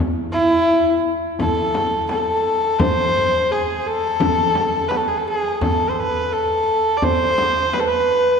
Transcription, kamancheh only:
0, 0, Header, 1, 2, 480
1, 0, Start_track
1, 0, Tempo, 704225
1, 1912, Time_signature, 4, 2, 24, 8
1, 5724, End_track
2, 0, Start_track
2, 0, Title_t, "Kamancheh"
2, 0, Program_c, 0, 110
2, 217, Note_on_c, 0, 64, 109
2, 677, Note_off_c, 0, 64, 0
2, 955, Note_on_c, 0, 69, 93
2, 1406, Note_off_c, 0, 69, 0
2, 1429, Note_on_c, 0, 69, 86
2, 1900, Note_on_c, 0, 72, 106
2, 1910, Note_off_c, 0, 69, 0
2, 2395, Note_on_c, 0, 68, 86
2, 2406, Note_off_c, 0, 72, 0
2, 2636, Note_on_c, 0, 69, 104
2, 2646, Note_off_c, 0, 68, 0
2, 3327, Note_on_c, 0, 71, 75
2, 3338, Note_off_c, 0, 69, 0
2, 3384, Note_on_c, 0, 69, 78
2, 3394, Note_off_c, 0, 71, 0
2, 3460, Note_on_c, 0, 68, 72
2, 3470, Note_off_c, 0, 69, 0
2, 3526, Note_on_c, 0, 69, 72
2, 3536, Note_off_c, 0, 68, 0
2, 3598, Note_on_c, 0, 68, 83
2, 3608, Note_off_c, 0, 69, 0
2, 3829, Note_off_c, 0, 68, 0
2, 3833, Note_on_c, 0, 69, 93
2, 4019, Note_on_c, 0, 72, 64
2, 4029, Note_off_c, 0, 69, 0
2, 4083, Note_on_c, 0, 71, 89
2, 4093, Note_off_c, 0, 72, 0
2, 4307, Note_on_c, 0, 69, 88
2, 4318, Note_off_c, 0, 71, 0
2, 4749, Note_on_c, 0, 74, 65
2, 4759, Note_off_c, 0, 69, 0
2, 4799, Note_on_c, 0, 72, 100
2, 4809, Note_off_c, 0, 74, 0
2, 5268, Note_on_c, 0, 71, 87
2, 5278, Note_off_c, 0, 72, 0
2, 5314, Note_on_c, 0, 69, 69
2, 5324, Note_off_c, 0, 71, 0
2, 5369, Note_on_c, 0, 71, 86
2, 5379, Note_off_c, 0, 69, 0
2, 5715, Note_off_c, 0, 71, 0
2, 5724, End_track
0, 0, End_of_file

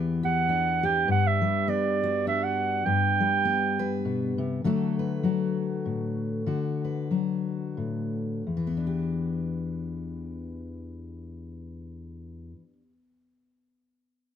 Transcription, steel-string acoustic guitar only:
0, 0, Header, 1, 2, 480
1, 0, Start_track
1, 0, Key_signature, 1, "minor"
1, 0, Tempo, 594648
1, 869, Time_signature, 3, 2, 24, 8
1, 4230, Tempo, 623053
1, 5670, Tempo, 681044
1, 6630, Tempo, 713436
1, 10586, End_track
2, 0, Start_track
2, 0, Title_t, "Steel-string acoustic guitar"
2, 0, Program_c, 0, 25
2, 0, Note_on_c, 0, 40, 65
2, 0, Note_on_c, 0, 52, 51
2, 0, Note_on_c, 0, 59, 52
2, 0, Note_on_c, 0, 67, 61
2, 184, Note_off_c, 0, 67, 0
2, 188, Note_on_c, 0, 67, 61
2, 395, Note_on_c, 0, 62, 53
2, 668, Note_off_c, 0, 67, 0
2, 671, Note_on_c, 0, 67, 64
2, 868, Note_off_c, 0, 40, 0
2, 871, Note_on_c, 0, 43, 73
2, 872, Note_off_c, 0, 52, 0
2, 1142, Note_on_c, 0, 55, 55
2, 1352, Note_off_c, 0, 59, 0
2, 1355, Note_on_c, 0, 59, 59
2, 1640, Note_off_c, 0, 67, 0
2, 1643, Note_on_c, 0, 66, 59
2, 1829, Note_off_c, 0, 62, 0
2, 1832, Note_on_c, 0, 62, 55
2, 2282, Note_off_c, 0, 55, 0
2, 2285, Note_off_c, 0, 43, 0
2, 2288, Note_off_c, 0, 59, 0
2, 2308, Note_on_c, 0, 43, 68
2, 2332, Note_off_c, 0, 66, 0
2, 2585, Note_on_c, 0, 55, 52
2, 2787, Note_on_c, 0, 59, 59
2, 3062, Note_on_c, 0, 71, 64
2, 3270, Note_on_c, 0, 47, 51
2, 3533, Note_off_c, 0, 47, 0
2, 3537, Note_on_c, 0, 48, 61
2, 3561, Note_off_c, 0, 62, 0
2, 3722, Note_off_c, 0, 71, 0
2, 3724, Note_off_c, 0, 43, 0
2, 3724, Note_off_c, 0, 55, 0
2, 3724, Note_off_c, 0, 59, 0
2, 3744, Note_off_c, 0, 48, 0
2, 3748, Note_on_c, 0, 50, 58
2, 3754, Note_on_c, 0, 54, 52
2, 3755, Note_on_c, 0, 57, 51
2, 3765, Note_on_c, 0, 66, 50
2, 3770, Note_on_c, 0, 69, 62
2, 4025, Note_off_c, 0, 69, 0
2, 4029, Note_on_c, 0, 71, 46
2, 4220, Note_off_c, 0, 54, 0
2, 4224, Note_on_c, 0, 54, 52
2, 4230, Note_off_c, 0, 66, 0
2, 4233, Note_on_c, 0, 66, 47
2, 4703, Note_on_c, 0, 45, 51
2, 5149, Note_off_c, 0, 54, 0
2, 5153, Note_off_c, 0, 50, 0
2, 5154, Note_off_c, 0, 66, 0
2, 5154, Note_off_c, 0, 71, 0
2, 5155, Note_off_c, 0, 45, 0
2, 5173, Note_on_c, 0, 50, 56
2, 5180, Note_on_c, 0, 66, 45
2, 5466, Note_on_c, 0, 71, 40
2, 5664, Note_off_c, 0, 66, 0
2, 5668, Note_on_c, 0, 54, 46
2, 5673, Note_on_c, 0, 66, 45
2, 6136, Note_on_c, 0, 45, 41
2, 6603, Note_off_c, 0, 45, 0
2, 6603, Note_off_c, 0, 50, 0
2, 6604, Note_off_c, 0, 54, 0
2, 6606, Note_off_c, 0, 66, 0
2, 6608, Note_off_c, 0, 71, 0
2, 6626, Note_on_c, 0, 40, 45
2, 6633, Note_off_c, 0, 57, 0
2, 6695, Note_on_c, 0, 52, 42
2, 6764, Note_on_c, 0, 59, 42
2, 6831, Note_on_c, 0, 62, 40
2, 6897, Note_on_c, 0, 67, 39
2, 9355, Note_off_c, 0, 40, 0
2, 9423, Note_off_c, 0, 52, 0
2, 9492, Note_off_c, 0, 59, 0
2, 9559, Note_off_c, 0, 62, 0
2, 9625, Note_off_c, 0, 67, 0
2, 10586, End_track
0, 0, End_of_file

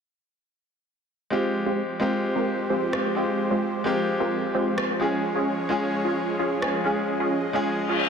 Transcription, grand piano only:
0, 0, Header, 1, 2, 480
1, 0, Start_track
1, 0, Tempo, 461538
1, 1369, Time_signature, 4, 2, 24, 8
1, 8414, End_track
2, 0, Start_track
2, 0, Title_t, "Grand piano"
2, 0, Program_c, 0, 0
2, 1357, Note_on_c, 0, 56, 82
2, 1365, Note_on_c, 0, 60, 75
2, 1373, Note_on_c, 0, 65, 76
2, 1381, Note_on_c, 0, 67, 90
2, 1556, Control_c, 0, 64, 127
2, 2054, Note_off_c, 0, 56, 0
2, 2058, Note_off_c, 0, 60, 0
2, 2062, Note_off_c, 0, 65, 0
2, 2066, Note_off_c, 0, 67, 0
2, 2076, Note_on_c, 0, 56, 90
2, 2085, Note_on_c, 0, 60, 82
2, 2094, Note_on_c, 0, 65, 77
2, 2101, Note_on_c, 0, 67, 94
2, 3014, Note_off_c, 0, 56, 0
2, 3018, Note_off_c, 0, 60, 0
2, 3022, Note_off_c, 0, 65, 0
2, 3026, Note_off_c, 0, 67, 0
2, 3044, Note_on_c, 0, 56, 72
2, 3048, Note_on_c, 0, 60, 69
2, 3052, Note_on_c, 0, 65, 67
2, 3056, Note_on_c, 0, 67, 81
2, 3258, Note_off_c, 0, 56, 0
2, 3259, Note_off_c, 0, 60, 0
2, 3261, Note_off_c, 0, 65, 0
2, 3264, Note_off_c, 0, 67, 0
2, 3276, Note_on_c, 0, 56, 74
2, 3284, Note_on_c, 0, 60, 65
2, 3293, Note_on_c, 0, 65, 67
2, 3301, Note_on_c, 0, 67, 79
2, 3973, Note_off_c, 0, 56, 0
2, 3977, Note_off_c, 0, 60, 0
2, 3982, Note_off_c, 0, 65, 0
2, 3986, Note_off_c, 0, 67, 0
2, 3996, Note_on_c, 0, 56, 90
2, 4004, Note_on_c, 0, 60, 82
2, 4012, Note_on_c, 0, 65, 84
2, 4020, Note_on_c, 0, 67, 97
2, 5173, Note_off_c, 0, 56, 0
2, 5177, Note_off_c, 0, 60, 0
2, 5182, Note_off_c, 0, 65, 0
2, 5186, Note_off_c, 0, 67, 0
2, 5197, Note_on_c, 0, 56, 82
2, 5205, Note_on_c, 0, 61, 77
2, 5213, Note_on_c, 0, 65, 74
2, 5222, Note_on_c, 0, 68, 90
2, 5224, Control_c, 0, 64, 0
2, 5417, Control_c, 0, 64, 127
2, 5894, Note_off_c, 0, 56, 0
2, 5898, Note_off_c, 0, 61, 0
2, 5902, Note_off_c, 0, 65, 0
2, 5907, Note_off_c, 0, 68, 0
2, 5916, Note_on_c, 0, 56, 91
2, 5925, Note_on_c, 0, 61, 85
2, 5932, Note_on_c, 0, 65, 82
2, 5942, Note_on_c, 0, 68, 95
2, 6854, Note_off_c, 0, 56, 0
2, 6858, Note_off_c, 0, 61, 0
2, 6862, Note_off_c, 0, 65, 0
2, 6867, Note_off_c, 0, 68, 0
2, 6882, Note_on_c, 0, 56, 74
2, 6887, Note_on_c, 0, 61, 70
2, 6890, Note_on_c, 0, 65, 72
2, 6896, Note_on_c, 0, 68, 83
2, 7097, Note_off_c, 0, 56, 0
2, 7099, Note_off_c, 0, 61, 0
2, 7101, Note_off_c, 0, 65, 0
2, 7103, Note_off_c, 0, 68, 0
2, 7115, Note_on_c, 0, 56, 76
2, 7123, Note_on_c, 0, 61, 68
2, 7131, Note_on_c, 0, 65, 66
2, 7140, Note_on_c, 0, 68, 77
2, 7813, Note_off_c, 0, 56, 0
2, 7817, Note_off_c, 0, 61, 0
2, 7821, Note_off_c, 0, 65, 0
2, 7826, Note_off_c, 0, 68, 0
2, 7834, Note_on_c, 0, 56, 92
2, 7842, Note_on_c, 0, 61, 85
2, 7851, Note_on_c, 0, 65, 80
2, 7859, Note_on_c, 0, 68, 100
2, 8414, Note_off_c, 0, 56, 0
2, 8414, Note_off_c, 0, 61, 0
2, 8414, Note_off_c, 0, 65, 0
2, 8414, Note_off_c, 0, 68, 0
2, 8414, End_track
0, 0, End_of_file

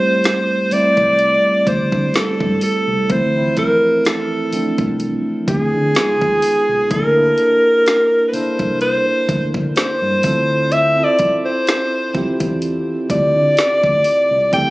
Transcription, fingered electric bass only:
0, 0, Header, 1, 3, 480
1, 0, Start_track
1, 0, Key_signature, -1, "minor"
1, 0, Tempo, 952381
1, 1561, Time_signature, 4, 2, 24, 8
1, 7409, End_track
2, 0, Start_track
2, 0, Title_t, "Fingered electric bass"
2, 0, Program_c, 0, 33
2, 490, Note_on_c, 0, 36, 96
2, 684, Note_off_c, 0, 36, 0
2, 841, Note_on_c, 0, 38, 90
2, 946, Note_off_c, 0, 38, 0
2, 969, Note_on_c, 0, 50, 102
2, 1059, Note_off_c, 0, 50, 0
2, 1212, Note_on_c, 0, 43, 92
2, 1301, Note_off_c, 0, 43, 0
2, 1451, Note_on_c, 0, 36, 92
2, 1540, Note_off_c, 0, 36, 0
2, 1561, Note_on_c, 0, 38, 101
2, 1755, Note_off_c, 0, 38, 0
2, 2411, Note_on_c, 0, 36, 83
2, 2605, Note_off_c, 0, 36, 0
2, 2760, Note_on_c, 0, 38, 91
2, 2865, Note_off_c, 0, 38, 0
2, 2892, Note_on_c, 0, 50, 104
2, 2981, Note_off_c, 0, 50, 0
2, 3132, Note_on_c, 0, 39, 90
2, 3221, Note_off_c, 0, 39, 0
2, 3371, Note_on_c, 0, 35, 88
2, 3460, Note_off_c, 0, 35, 0
2, 3481, Note_on_c, 0, 38, 117
2, 3675, Note_off_c, 0, 38, 0
2, 4331, Note_on_c, 0, 36, 96
2, 4525, Note_off_c, 0, 36, 0
2, 4680, Note_on_c, 0, 38, 96
2, 4786, Note_off_c, 0, 38, 0
2, 4810, Note_on_c, 0, 50, 105
2, 4900, Note_off_c, 0, 50, 0
2, 5050, Note_on_c, 0, 43, 90
2, 5140, Note_off_c, 0, 43, 0
2, 5161, Note_on_c, 0, 38, 102
2, 5549, Note_off_c, 0, 38, 0
2, 6252, Note_on_c, 0, 40, 85
2, 6446, Note_off_c, 0, 40, 0
2, 6602, Note_on_c, 0, 38, 93
2, 6706, Note_off_c, 0, 38, 0
2, 6731, Note_on_c, 0, 50, 93
2, 6820, Note_off_c, 0, 50, 0
2, 6972, Note_on_c, 0, 38, 88
2, 7061, Note_off_c, 0, 38, 0
2, 7211, Note_on_c, 0, 36, 91
2, 7300, Note_off_c, 0, 36, 0
2, 7322, Note_on_c, 0, 38, 107
2, 7409, Note_off_c, 0, 38, 0
2, 7409, End_track
3, 0, Start_track
3, 0, Title_t, "Muted fingered electric bass strokes"
3, 361, Note_on_c, 9, 29, 49
3, 412, Note_off_c, 9, 29, 0
3, 1080, Note_on_c, 9, 29, 49
3, 1131, Note_off_c, 9, 29, 0
3, 2281, Note_on_c, 9, 29, 50
3, 2332, Note_off_c, 9, 29, 0
3, 4201, Note_on_c, 9, 29, 50
3, 4252, Note_off_c, 9, 29, 0
3, 6122, Note_on_c, 9, 29, 45
3, 6172, Note_off_c, 9, 29, 0
3, 7409, End_track
0, 0, End_of_file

